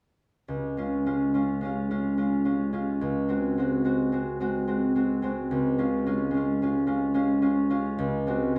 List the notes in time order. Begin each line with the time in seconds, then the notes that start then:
0.48 C#2
0.77 G#3 C#4 F4
1.06 G#3 C#4 F4
1.34 G#3 C#4 F4
1.61 G#3 C#4
1.65 F4
1.91 G#3 C#4 F4
2.17 G#3 C#4 F4
2.45 G#3 C#4 F4
2.73 G#3 C#4 F4
3.01 C#2
3.28 G#3 C4 F#4
3.58 G#3 C4 F#4
3.84 G#3 C4 F#4
4.12 G#3 C4 F#4
4.40 G#3 C4 F#4
4.67 G#3 C4 F#4
4.95 G#3 C4 F#4
5.22 G#3 C4 F#4
5.51 C#2
5.78 G#3 C#4 F4
6.06 G#3 C#4 F4
6.31 G#3 C#4
6.37 F4
6.62 G#3 C#4 F4
6.87 G#3 C#4 F4
7.14 G#3 C#4 F4
7.42 G#3 C#4 F4
7.70 G#3 C#4 F4
7.98 C#2
8.27 G#3 C4 F#4
8.55 G#3